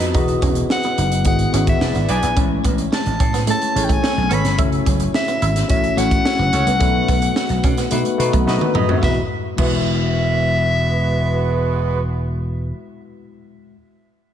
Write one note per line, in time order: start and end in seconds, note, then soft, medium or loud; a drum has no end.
0.00 0.16 F2 medium
0.00 0.14 B3 medium
0.00 0.17 D#4 medium
0.00 0.14 F#4 medium
0.00 0.16 A4 medium
0.00 0.15 D#5 loud
0.00 snare soft
0.00 closed hi-hat medium
0.14 0.34 E1 loud
0.14 1.12 B3 medium
0.14 0.23 D#4 loud
0.14 1.12 E4 medium
0.14 1.13 F#4 medium
0.14 1.13 G#4 medium
0.14 1.13 D#5 loud
0.14 kick loud
0.14 closed hi-hat medium
0.28 closed hi-hat soft
0.42 0.62 E1 loud
0.42 0.51 C#4 medium
0.42 kick medium
0.42 closed hi-hat medium
0.55 muted clean electric guitar stroke soft
0.55 closed hi-hat medium
0.70 1.23 F#5 loud
0.70 muted clean electric guitar stroke soft
0.70 snare loud
0.83 0.93 B3 medium
0.83 closed hi-hat soft
0.98 1.25 F#1 medium
0.98 1.07 D#4 medium
0.98 closed hi-hat medium
1.12 closed hi-hat medium
1.25 1.45 G#1 medium
1.25 1.50 B3 medium
1.25 1.50 E4 medium
1.25 1.50 F#4 medium
1.25 1.50 G#4 medium
1.25 1.50 D#5 medium
1.25 1.65 F#5 loud
1.25 kick medium
1.25 closed hi-hat medium
1.39 closed hi-hat soft
1.52 1.73 G#1 medium
1.52 1.79 B3 medium
1.52 1.62 C#4 medium
1.52 1.80 E4 medium
1.52 1.81 F#4 medium
1.52 1.80 G#4 medium
1.52 1.81 F#5 medium
1.52 closed hi-hat medium
1.67 2.12 E5 medium
1.67 kick medium
1.67 closed hi-hat soft
1.80 1.91 E1 medium
1.80 2.30 B3 medium
1.80 2.30 D4 medium
1.80 1.93 D4 medium
1.80 2.30 E4 medium
1.80 2.30 G#4 medium
1.80 1.93 G#4 medium
1.80 1.93 B4 medium
1.80 1.93 D5 loud
1.80 2.30 D5 medium
1.80 snare loud
1.95 2.05 G#1 medium
1.95 2.04 B3 medium
1.95 closed hi-hat soft
2.09 2.19 B1 medium
2.09 2.27 D4 loud
2.09 2.27 G#4 loud
2.09 2.27 B4 loud
2.09 2.27 D5 loud
2.09 2.37 G#5 loud
2.09 muted clean electric guitar stroke soft
2.09 closed hi-hat medium
2.23 2.33 A#1 medium
2.23 2.32 B3 medium
2.23 closed hi-hat medium
2.36 2.56 A1 loud
2.36 3.35 G#3 medium
2.36 3.34 A3 medium
2.36 3.34 C#4 medium
2.36 2.46 C#4 medium
2.36 3.35 E4 medium
2.36 3.35 C#5 medium
2.36 kick loud
2.36 closed hi-hat medium
2.64 2.84 A1 loud
2.64 2.73 B3 medium
2.64 kick medium
2.64 closed hi-hat medium
2.78 muted clean electric guitar stroke soft
2.78 closed hi-hat medium
2.92 3.45 A5 medium
2.92 muted clean electric guitar stroke soft
2.92 snare loud
3.06 3.16 A1 medium
3.06 closed hi-hat soft
3.20 3.50 A2 medium
3.20 3.29 C#4 medium
3.20 kick loud
3.20 closed hi-hat medium
3.34 3.43 B3 medium
3.34 snare soft
3.34 closed hi-hat soft
3.47 3.72 A3 medium
3.47 3.56 A3 loud
3.47 3.72 C#4 medium
3.47 3.72 E4 medium
3.47 3.72 G#4 medium
3.47 3.72 C#5 medium
3.47 3.86 A5 loud
3.47 closed hi-hat medium
3.62 muted clean electric guitar stroke soft
3.62 closed hi-hat soft
3.75 3.95 A1 medium
3.75 4.49 A3 medium
3.75 4.49 C#4 medium
3.75 4.49 E4 medium
3.75 4.49 G#4 medium
3.75 4.49 C#5 medium
3.75 closed hi-hat medium
3.84 3.94 G5 medium
3.89 3.98 A3 medium
3.89 4.35 G#5 loud
3.89 kick medium
3.89 closed hi-hat soft
4.02 4.14 C#4 medium
4.02 4.14 A4 medium
4.02 4.14 C#5 medium
4.02 snare loud
4.17 4.27 B1 loud
4.30 4.41 G#1 loud
4.30 4.39 B3 medium
4.30 4.48 C#4 loud
4.30 4.48 A4 loud
4.30 4.48 C#5 loud
4.30 4.60 B5 medium
4.30 closed hi-hat medium
4.45 4.55 G1 medium
4.45 snare soft
4.45 closed hi-hat medium
4.58 4.78 F#1 loud
4.58 5.56 A3 medium
4.58 5.57 C#4 medium
4.58 5.57 E4 medium
4.58 4.67 E4 medium
4.58 5.57 F#4 medium
4.58 5.57 C#5 medium
4.58 kick loud
4.58 closed hi-hat medium
4.72 closed hi-hat soft
4.86 5.06 F#1 loud
4.86 4.95 C#4 medium
4.86 kick medium
4.86 closed hi-hat medium
5.00 muted clean electric guitar stroke medium
5.00 closed hi-hat medium
5.14 5.67 E5 loud
5.14 muted clean electric guitar stroke soft
5.14 snare loud
5.28 5.37 B3 medium
5.28 closed hi-hat soft
5.42 5.62 G#1 medium
5.42 5.51 E4 medium
5.42 closed hi-hat medium
5.56 snare soft
5.56 closed hi-hat medium
5.68 5.89 A1 loud
5.68 5.94 A3 medium
5.68 5.94 C#4 medium
5.68 5.94 E4 medium
5.68 5.94 F#4 medium
5.68 5.94 C#5 medium
5.68 6.00 E5 loud
5.68 kick medium
5.68 closed hi-hat medium
5.84 closed hi-hat soft
5.96 6.17 A1 loud
5.96 6.71 A3 medium
5.96 6.71 C#4 medium
5.96 6.06 C#4 medium
5.96 6.71 E4 medium
5.96 6.71 F#4 medium
5.96 6.71 C#5 medium
5.96 8.48 F#5 loud
5.96 closed hi-hat medium
6.11 kick medium
6.11 closed hi-hat soft
6.25 6.37 C#4 medium
6.25 6.37 F#4 medium
6.25 6.37 A4 medium
6.25 6.37 C#5 medium
6.25 snare loud
6.39 6.49 F#1 loud
6.39 6.48 B3 medium
6.53 6.63 C#2 medium
6.53 6.71 C#4 loud
6.53 6.71 F#4 loud
6.53 6.71 A4 loud
6.53 6.71 C#5 loud
6.53 muted clean electric guitar stroke soft
6.53 closed hi-hat medium
6.67 6.77 C2 medium
6.67 6.76 B3 medium
6.67 closed hi-hat medium
6.79 7.00 B1 loud
6.79 7.78 A3 loud
6.79 7.78 B3 medium
6.79 6.89 C#4 medium
6.79 7.79 D#4 medium
6.79 7.79 F#4 medium
6.79 7.79 B4 loud
6.79 kick loud
6.79 closed hi-hat medium
7.08 7.28 B1 loud
7.08 7.17 B3 medium
7.08 kick medium
7.08 closed hi-hat medium
7.22 muted clean electric guitar stroke medium
7.22 closed hi-hat medium
7.36 muted clean electric guitar stroke soft
7.36 snare loud
7.49 7.59 B1 loud
7.49 closed hi-hat soft
7.64 7.84 B2 loud
7.64 7.73 C#4 medium
7.64 kick loud
7.64 closed hi-hat medium
7.77 7.87 B3 medium
7.77 snare soft
7.77 closed hi-hat medium
7.91 8.02 B2 loud
7.91 8.16 A3 medium
7.91 8.01 A3 medium
7.91 8.16 B3 medium
7.91 8.16 D#4 medium
7.91 8.16 F#4 medium
7.91 8.16 B4 medium
7.91 closed hi-hat medium
8.05 muted clean electric guitar stroke soft
8.05 closed hi-hat soft
8.18 8.29 B2 loud
8.18 8.45 A3 loud
8.18 8.45 B3 medium
8.18 8.46 D#4 medium
8.18 8.46 F#4 medium
8.18 8.46 B4 loud
8.18 closed hi-hat medium
8.33 8.43 B1 medium
8.33 8.42 A3 medium
8.33 kick medium
8.33 closed hi-hat soft
8.46 8.57 B1 loud
8.46 8.96 A3 medium
8.46 8.96 B3 medium
8.46 8.96 D#4 medium
8.46 8.59 D#4 medium
8.46 8.96 F#4 medium
8.46 8.59 A4 medium
8.46 8.96 B4 loud
8.46 8.59 B4 medium
8.46 8.59 D#5 medium
8.46 snare medium
8.61 high tom medium
8.75 8.85 F#2 medium
8.75 8.84 B3 medium
8.75 9.11 D#4 loud
8.75 9.11 G#4 loud
8.75 9.01 B4 loud
8.75 9.11 D#5 loud
8.75 mid tom loud
8.88 8.98 F2 medium
8.88 floor tom medium
9.00 9.18 E1 loud
9.00 9.17 G#3 medium
9.00 9.18 G#3 medium
9.00 9.18 B3 loud
9.00 9.13 B3 medium
9.00 9.18 E4 medium
9.00 9.18 F#4 medium
9.00 9.18 B4 loud
9.00 9.19 E5 loud
9.00 kick loud
9.00 snare medium
9.05 9.19 D#5 medium
9.56 12.71 E1 loud
9.56 12.69 G#3 medium
9.56 12.01 G#3 medium
9.56 9.68 B3 medium
9.56 12.01 B3 medium
9.56 12.70 E4 medium
9.56 12.01 F#4 medium
9.56 12.71 F#4 medium
9.56 12.01 B4 loud
9.56 kick loud
9.56 crash medium
9.60 12.02 E5 loud
9.60 12.72 E5 medium